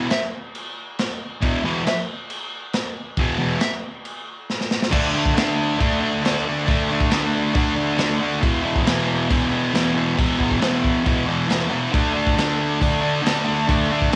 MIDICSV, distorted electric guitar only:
0, 0, Header, 1, 2, 480
1, 0, Start_track
1, 0, Tempo, 437956
1, 1564, Time_signature, 4, 2, 24, 8
1, 15515, End_track
2, 0, Start_track
2, 0, Title_t, "Distorted electric guitar"
2, 0, Program_c, 0, 30
2, 1549, Note_on_c, 0, 40, 91
2, 1549, Note_on_c, 0, 47, 91
2, 1563, Note_on_c, 0, 52, 98
2, 1749, Note_off_c, 0, 40, 0
2, 1749, Note_off_c, 0, 47, 0
2, 1755, Note_off_c, 0, 52, 0
2, 1800, Note_on_c, 0, 40, 94
2, 1807, Note_on_c, 0, 47, 96
2, 1812, Note_on_c, 0, 52, 113
2, 1994, Note_off_c, 0, 40, 0
2, 1997, Note_off_c, 0, 47, 0
2, 2000, Note_off_c, 0, 52, 0
2, 3486, Note_on_c, 0, 40, 85
2, 3494, Note_on_c, 0, 47, 94
2, 3504, Note_on_c, 0, 52, 103
2, 3677, Note_off_c, 0, 40, 0
2, 3681, Note_off_c, 0, 47, 0
2, 3686, Note_off_c, 0, 52, 0
2, 3710, Note_on_c, 0, 40, 98
2, 3712, Note_on_c, 0, 47, 103
2, 3725, Note_on_c, 0, 52, 98
2, 3909, Note_off_c, 0, 40, 0
2, 3910, Note_off_c, 0, 47, 0
2, 3917, Note_off_c, 0, 52, 0
2, 5379, Note_on_c, 0, 50, 88
2, 5399, Note_on_c, 0, 57, 98
2, 5408, Note_on_c, 0, 62, 107
2, 5611, Note_off_c, 0, 62, 0
2, 5616, Note_on_c, 0, 62, 75
2, 5644, Note_off_c, 0, 57, 0
2, 5649, Note_on_c, 0, 57, 63
2, 5854, Note_off_c, 0, 50, 0
2, 5858, Note_on_c, 0, 50, 87
2, 5870, Note_off_c, 0, 57, 0
2, 5874, Note_on_c, 0, 57, 86
2, 5888, Note_off_c, 0, 62, 0
2, 5892, Note_on_c, 0, 62, 89
2, 6331, Note_off_c, 0, 50, 0
2, 6344, Note_on_c, 0, 50, 90
2, 6349, Note_off_c, 0, 57, 0
2, 6362, Note_on_c, 0, 57, 92
2, 6364, Note_off_c, 0, 62, 0
2, 6377, Note_on_c, 0, 62, 106
2, 6571, Note_off_c, 0, 62, 0
2, 6584, Note_on_c, 0, 62, 78
2, 6600, Note_off_c, 0, 57, 0
2, 6613, Note_on_c, 0, 57, 60
2, 6805, Note_off_c, 0, 50, 0
2, 6818, Note_on_c, 0, 50, 82
2, 6823, Note_off_c, 0, 57, 0
2, 6837, Note_off_c, 0, 62, 0
2, 6837, Note_on_c, 0, 57, 74
2, 6850, Note_on_c, 0, 62, 81
2, 7064, Note_off_c, 0, 62, 0
2, 7078, Note_on_c, 0, 62, 80
2, 7098, Note_off_c, 0, 57, 0
2, 7111, Note_on_c, 0, 57, 60
2, 7296, Note_off_c, 0, 50, 0
2, 7309, Note_on_c, 0, 50, 92
2, 7315, Note_off_c, 0, 57, 0
2, 7328, Note_on_c, 0, 57, 99
2, 7334, Note_off_c, 0, 62, 0
2, 7347, Note_on_c, 0, 62, 97
2, 7546, Note_off_c, 0, 62, 0
2, 7559, Note_on_c, 0, 62, 77
2, 7579, Note_off_c, 0, 57, 0
2, 7592, Note_on_c, 0, 57, 69
2, 7778, Note_off_c, 0, 50, 0
2, 7791, Note_on_c, 0, 50, 78
2, 7798, Note_off_c, 0, 57, 0
2, 7811, Note_on_c, 0, 57, 92
2, 7812, Note_off_c, 0, 62, 0
2, 7825, Note_on_c, 0, 62, 95
2, 8253, Note_off_c, 0, 50, 0
2, 8266, Note_on_c, 0, 50, 100
2, 8271, Note_off_c, 0, 57, 0
2, 8283, Note_off_c, 0, 62, 0
2, 8284, Note_on_c, 0, 57, 100
2, 8297, Note_on_c, 0, 62, 107
2, 8497, Note_off_c, 0, 62, 0
2, 8510, Note_on_c, 0, 62, 78
2, 8523, Note_off_c, 0, 57, 0
2, 8537, Note_on_c, 0, 57, 61
2, 8720, Note_off_c, 0, 50, 0
2, 8733, Note_on_c, 0, 50, 82
2, 8737, Note_off_c, 0, 57, 0
2, 8750, Note_on_c, 0, 57, 83
2, 8757, Note_off_c, 0, 62, 0
2, 8770, Note_on_c, 0, 62, 94
2, 8965, Note_off_c, 0, 62, 0
2, 8978, Note_on_c, 0, 62, 72
2, 8998, Note_off_c, 0, 57, 0
2, 9011, Note_on_c, 0, 57, 62
2, 9209, Note_on_c, 0, 40, 92
2, 9212, Note_off_c, 0, 50, 0
2, 9214, Note_off_c, 0, 62, 0
2, 9225, Note_on_c, 0, 47, 96
2, 9230, Note_off_c, 0, 57, 0
2, 9245, Note_on_c, 0, 52, 110
2, 9447, Note_off_c, 0, 52, 0
2, 9452, Note_on_c, 0, 52, 81
2, 9471, Note_off_c, 0, 47, 0
2, 9484, Note_on_c, 0, 47, 67
2, 9680, Note_off_c, 0, 40, 0
2, 9684, Note_on_c, 0, 40, 82
2, 9691, Note_off_c, 0, 47, 0
2, 9704, Note_on_c, 0, 47, 92
2, 9711, Note_off_c, 0, 52, 0
2, 9715, Note_on_c, 0, 52, 98
2, 10174, Note_off_c, 0, 40, 0
2, 10187, Note_on_c, 0, 40, 98
2, 10188, Note_off_c, 0, 47, 0
2, 10201, Note_on_c, 0, 47, 100
2, 10204, Note_off_c, 0, 52, 0
2, 10218, Note_on_c, 0, 52, 105
2, 10401, Note_off_c, 0, 52, 0
2, 10414, Note_on_c, 0, 52, 79
2, 10433, Note_off_c, 0, 47, 0
2, 10447, Note_on_c, 0, 47, 59
2, 10654, Note_off_c, 0, 40, 0
2, 10667, Note_on_c, 0, 40, 78
2, 10671, Note_off_c, 0, 47, 0
2, 10681, Note_off_c, 0, 52, 0
2, 10684, Note_on_c, 0, 47, 89
2, 10694, Note_on_c, 0, 52, 90
2, 10892, Note_off_c, 0, 52, 0
2, 10905, Note_on_c, 0, 52, 70
2, 10923, Note_off_c, 0, 47, 0
2, 10936, Note_on_c, 0, 47, 68
2, 11136, Note_off_c, 0, 40, 0
2, 11149, Note_on_c, 0, 40, 104
2, 11152, Note_off_c, 0, 47, 0
2, 11165, Note_off_c, 0, 52, 0
2, 11165, Note_on_c, 0, 47, 101
2, 11178, Note_on_c, 0, 52, 100
2, 11371, Note_off_c, 0, 52, 0
2, 11384, Note_on_c, 0, 52, 79
2, 11409, Note_off_c, 0, 47, 0
2, 11422, Note_on_c, 0, 47, 59
2, 11603, Note_off_c, 0, 40, 0
2, 11615, Note_off_c, 0, 47, 0
2, 11616, Note_on_c, 0, 40, 87
2, 11628, Note_on_c, 0, 47, 93
2, 11633, Note_off_c, 0, 52, 0
2, 11647, Note_on_c, 0, 52, 88
2, 12086, Note_off_c, 0, 40, 0
2, 12099, Note_on_c, 0, 40, 85
2, 12104, Note_off_c, 0, 47, 0
2, 12117, Note_on_c, 0, 47, 103
2, 12118, Note_off_c, 0, 52, 0
2, 12131, Note_on_c, 0, 52, 105
2, 12328, Note_off_c, 0, 52, 0
2, 12342, Note_on_c, 0, 52, 73
2, 12354, Note_off_c, 0, 47, 0
2, 12367, Note_on_c, 0, 47, 61
2, 12567, Note_off_c, 0, 40, 0
2, 12580, Note_on_c, 0, 40, 73
2, 12581, Note_off_c, 0, 47, 0
2, 12594, Note_off_c, 0, 52, 0
2, 12594, Note_on_c, 0, 47, 75
2, 12607, Note_on_c, 0, 52, 80
2, 12807, Note_off_c, 0, 52, 0
2, 12820, Note_on_c, 0, 52, 78
2, 12840, Note_off_c, 0, 47, 0
2, 12853, Note_on_c, 0, 47, 59
2, 13056, Note_off_c, 0, 40, 0
2, 13056, Note_off_c, 0, 47, 0
2, 13057, Note_off_c, 0, 52, 0
2, 13060, Note_on_c, 0, 50, 87
2, 13077, Note_on_c, 0, 57, 97
2, 13088, Note_on_c, 0, 62, 99
2, 13296, Note_off_c, 0, 62, 0
2, 13300, Note_on_c, 0, 62, 70
2, 13323, Note_off_c, 0, 57, 0
2, 13328, Note_on_c, 0, 57, 62
2, 13536, Note_off_c, 0, 50, 0
2, 13540, Note_on_c, 0, 50, 81
2, 13557, Note_off_c, 0, 57, 0
2, 13562, Note_on_c, 0, 57, 93
2, 13566, Note_off_c, 0, 62, 0
2, 13571, Note_on_c, 0, 62, 96
2, 14009, Note_off_c, 0, 50, 0
2, 14022, Note_on_c, 0, 50, 95
2, 14028, Note_off_c, 0, 57, 0
2, 14034, Note_off_c, 0, 62, 0
2, 14041, Note_on_c, 0, 57, 100
2, 14047, Note_on_c, 0, 62, 99
2, 14245, Note_off_c, 0, 62, 0
2, 14258, Note_on_c, 0, 62, 74
2, 14277, Note_off_c, 0, 57, 0
2, 14291, Note_on_c, 0, 57, 64
2, 14479, Note_off_c, 0, 50, 0
2, 14492, Note_on_c, 0, 50, 76
2, 14493, Note_off_c, 0, 57, 0
2, 14505, Note_off_c, 0, 62, 0
2, 14506, Note_on_c, 0, 57, 79
2, 14518, Note_on_c, 0, 62, 82
2, 14726, Note_off_c, 0, 62, 0
2, 14740, Note_on_c, 0, 62, 80
2, 14760, Note_off_c, 0, 57, 0
2, 14773, Note_on_c, 0, 57, 66
2, 14975, Note_off_c, 0, 50, 0
2, 14988, Note_on_c, 0, 50, 88
2, 14998, Note_off_c, 0, 57, 0
2, 15011, Note_off_c, 0, 62, 0
2, 15012, Note_on_c, 0, 57, 110
2, 15024, Note_on_c, 0, 62, 104
2, 15215, Note_off_c, 0, 62, 0
2, 15229, Note_on_c, 0, 62, 82
2, 15245, Note_off_c, 0, 57, 0
2, 15258, Note_on_c, 0, 57, 65
2, 15448, Note_off_c, 0, 50, 0
2, 15462, Note_on_c, 0, 50, 77
2, 15467, Note_off_c, 0, 57, 0
2, 15480, Note_on_c, 0, 57, 100
2, 15483, Note_off_c, 0, 62, 0
2, 15515, Note_off_c, 0, 50, 0
2, 15515, Note_off_c, 0, 57, 0
2, 15515, End_track
0, 0, End_of_file